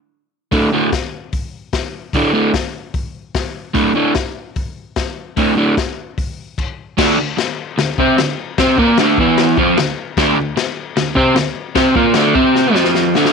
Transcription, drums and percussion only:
0.52 kick, open hi-hat
0.92 kick, snare, open hi-hat
1.33 kick, open hi-hat
1.73 kick, snare, open hi-hat
2.13 kick, open hi-hat
2.54 kick, snare, open hi-hat
2.94 kick, open hi-hat
3.35 kick, snare, open hi-hat
3.75 kick, open hi-hat
4.15 kick, snare, open hi-hat
4.56 kick, open hi-hat
4.96 kick, snare, open hi-hat
5.37 kick, open hi-hat
5.77 kick, snare, open hi-hat
6.18 kick, open hi-hat
6.58 kick, crash
6.98 kick, snare, crash
7.38 snare, crash
7.78 snare, crash
7.98 kick
8.18 snare, crash
8.58 kick, snare, crash
8.78 kick
8.97 snare, crash
9.18 kick
9.38 snare, crash
9.57 kick
9.77 snare, crash
10.17 kick, snare, crash
10.57 snare, crash
10.97 snare, crash
11.16 kick
11.36 snare, crash
11.75 kick, snare, crash
11.95 kick
12.14 snare, crash
12.35 kick
12.55 snare
12.75 snare
12.84 snare
12.95 snare
13.15 snare
13.25 snare

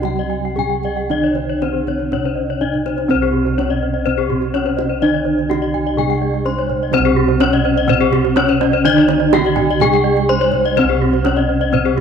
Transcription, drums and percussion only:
0.03 kendang high, kendang low
0.17 kendang slap
0.30 kendang slap
0.57 kendang low
0.70 kendang slap
0.83 kendang low
0.96 kendang slap
1.10 kendang high
1.22 kendang slap
1.35 kendang slap, kendang high
1.62 kendang slap, kendang high
1.87 kendang slap, kendang low
1.99 kendang slap
2.12 kendang high, kendang low
2.24 kendang slap
2.37 kendang slap
2.62 kendang low
2.74 kendang low
2.86 kendang high
2.98 kendang high
3.10 kendang high
3.47 kendang slap
3.59 kendang high
3.71 kendang slap
4.07 kendang low
4.19 kendang slap
4.30 kendang low
4.42 kendang slap
4.55 kendang high
4.67 kendang slap
4.78 kendang high
5.39 kendang slap
5.51 kendang high
5.64 kendang slap
5.74 kendang low
5.99 kendang high, kendang low
6.11 kendang slap
6.34 kendang slap
6.58 kendang slap
6.70 kendang low
6.93 kendang high
7.28 kendang slap
7.40 kendang high
7.53 kendang slap
7.88 kendang low
8.01 kendang slap
8.13 kendang low
8.25 kendang slap
8.36 kendang high
8.48 kendang slap
8.61 kendang high
8.96 kendang slap
9.08 kendang high
9.20 kendang slap
9.33 kendang high
9.45 kendang slap
9.56 kendang high, kendang low
9.80 kendang high, kendang low
9.93 kendang slap
10.17 kendang slap
10.41 kendang slap
10.52 kendang low
10.65 kendang slap
10.78 kendang high
11.13 kendang slap
11.25 kendang high
11.37 kendang slap
11.73 kendang low
11.86 kendang slap

